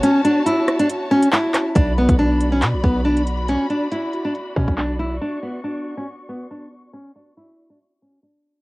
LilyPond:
<<
  \new Staff \with { instrumentName = "String section" } { \time 4/4 \key b \minor \tempo 4 = 139 << { a''1 | b''1~ | b''1 | cis'''1~ |
cis'''1 | } \\ { <fis' cis''>1 | <fis' d''>1~ | <fis' d''>1~ | <fis' d''>1~ |
<fis' d''>1 | } >> }
  \new Staff \with { instrumentName = "Nylon-string guitar" } { \time 4/4 \key b \minor cis'8 d'8 e'8. d'16 r8 cis'8 e'4 | d'8 b8 d'8. cis'16 r8 b8 d'8 r8 | cis'8 d'8 e'8. d'16 r8 cis'8 d'8 e'8 | d'8 b8 d'8. cis'16 r8 b8 d'8 r8 |
cis'8 d'8 e'8. d'16 r8 cis'8 d'4 | }
  \new Staff \with { instrumentName = "808-style bass" } { \clef bass \time 4/4 \key b \minor r1 | b,,8. b,,4~ b,,16 b,16 b,,16 b,,4.~ | b,,16 r2 r16 b,16 b,,4~ b,,16 | r1 |
r1 | }
  \new DrumStaff \with { instrumentName = "Drums" } \drummode { \time 4/4 hh8 hh8 hh8 <hh ss>16 hh16 hh8. hh16 hc8 <hc hh ss>8 | <hh bd>8. <hh bd>16 r8 hh8 <hc hh>8 bd8 r16 hh16 hh8 | hh8 hh8 hh8 hh8 hh8 bd16 <hh bd>16 hc8 hh8 | r4 r4 r4 r4 |
r4 r4 r4 r4 | }
>>